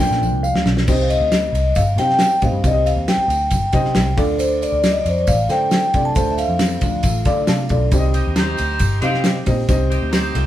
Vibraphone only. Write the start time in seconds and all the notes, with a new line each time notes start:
0.88 C5
1.02 F5
1.10 D#5
1.76 F5
1.99 G5
2.45 F5
2.66 D#5
2.86 F5
3.08 G5
4.38 C5
4.62 D5
4.91 D#5
5.01 D5
5.09 C5
5.18 D5
5.28 F5
5.51 G5
6.05 A5
6.16 A5
6.31 E5
6.38 F5